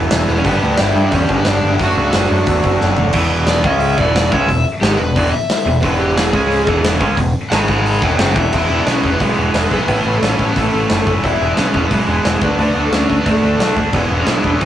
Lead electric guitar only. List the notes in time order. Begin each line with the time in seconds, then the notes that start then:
0.29 B3 B4
0.36 C#4 C#5
0.46 B3 B4
0.80 E4 E5
1.05 D4 D5
1.12 C#4 C#5
1.37 B3 B4
1.47 D4 D5
1.73 E4 E5
1.81 F#4 F#5
3.48 D5
3.64 E5
3.98 D5
4.15 D5
4.32 E5
4.81 G4
4.97 B4
5.16 D5
5.32 E5
5.82 B4
5.99 G4
6.16 G#4
7.50 G#5 B5
7.68 G#5 B5
7.86 G#5 B5
8.03 E5 G5
8.20 E5 G5
8.39 E5
8.55 E4 E5
8.80 D4 D5
8.88 C#4 C#5
9.12 B3 B4
9.21 G#3 G#4
9.73 B3 B4
9.90 B3 B4
10.16 A3 A4
10.24 C#4 C#5
10.49 B3 B4
10.59 A3 A4
11.24 E4 E5
11.51 D4 D5
11.59 C#4 C#5
11.83 B3 B4
11.93 G#3 G#4
12.44 B3 B4
12.60 B3 B4
12.85 A3 A4
12.94 C#4 C#5
13.19 B3 B4
13.27 A3 A4
13.96 B3 B4
14.20 C#4 C#5
14.28 D4 D5
14.54 C#4 C#5
14.61 B3